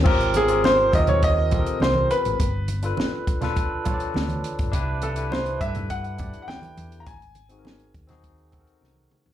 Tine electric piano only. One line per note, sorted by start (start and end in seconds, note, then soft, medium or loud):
0.04 0.42 C4 loud
0.04 0.42 F4 loud
0.04 0.43 G4 loud
0.04 0.43 A#4 loud
0.48 0.86 C4 medium
0.48 0.86 F4 medium
0.48 0.87 G4 medium
0.48 0.87 A#4 medium
0.92 1.42 C4 medium
0.92 1.43 F4 medium
0.92 1.43 G4 medium
0.92 1.43 A#4 medium
1.51 2.39 C4 medium
1.51 2.40 F4 medium
1.51 2.40 G4 medium
1.51 1.59 A4 medium
1.60 2.44 A#4 medium
2.83 3.32 D4 medium
2.83 3.33 F4 medium
2.83 3.33 A4 medium
2.83 3.34 B4 loud
3.41 3.78 D4 medium
3.41 3.79 F4 medium
3.41 3.79 A4 medium
3.41 3.80 B4 loud
3.84 4.59 D4 medium
3.84 4.59 F4 medium
3.84 4.60 A4 medium
3.84 3.93 C#5 medium
3.94 4.64 D5 medium
4.71 5.09 D4 loud
4.71 5.10 E4 loud
4.71 5.10 G4 loud
4.71 5.11 B4 loud
5.15 5.53 D4 medium
5.15 5.54 E4 medium
5.15 5.54 G4 medium
5.15 5.55 B4 medium
5.58 6.09 D4 medium
5.58 6.10 E4 medium
5.58 6.10 G4 medium
5.58 5.68 A4 medium
5.68 6.14 B4 medium
6.17 7.06 D4 medium
6.17 7.06 E4 medium
6.17 7.07 G4 medium
6.17 7.07 D5 medium
7.49 7.99 C4 medium
7.49 8.00 D#4 medium
7.49 8.00 F#4 medium
7.49 7.58 G#4 medium
7.59 8.04 A#4 medium
8.07 8.45 C4 medium
8.07 8.46 D#4 medium
8.07 8.46 F#4 medium
8.07 8.47 G#4 loud
8.52 9.26 C4 medium
8.52 9.26 D#4 medium
8.52 9.27 F#4 medium
8.52 8.60 A4 medium
8.61 9.31 A#4 medium